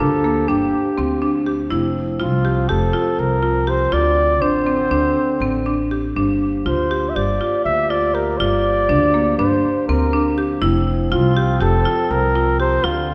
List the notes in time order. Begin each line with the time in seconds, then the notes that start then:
Already playing: F3 A#3 G4
0.00 D2 D4 A4
0.24 A#3
0.48 G1 D4 G4
0.98 D2 C4
1.22 D4
1.46 G4
1.70 F1 F3 C4 E4
2.20 C2 F4
2.45 G4
2.69 F1 G4 A4
2.93 F4
3.19 C2 A#4
3.42 F4
3.67 G4 C5
3.92 D2 D3 C4 F4 D5
4.41 A1 D4 C5
4.66 C4
4.91 D2 D4
5.40 A1 C4
5.66 D4
5.91 G4
6.16 G1 F3 A#3 D4 G4
6.66 D2 F4 C5
6.91 G4
7.09 E5
7.16 G1 G4 D5
7.41 F4
7.65 D2 E5
7.90 F4 D5
8.14 G4 A#4
8.38 G1 F4 D5
8.89 D2 D4
9.14 A#3
9.38 G1 D4 C5
9.88 D2 C4 A#4
10.13 D4
10.38 G4
10.62 F1 F3 C4 E4
11.11 C2 F4
11.37 G4
11.61 F1 G4 A4
11.85 F4
12.10 C2 A#4
12.35 F4
12.60 G4 C5
12.84 D2 D3 C4 F4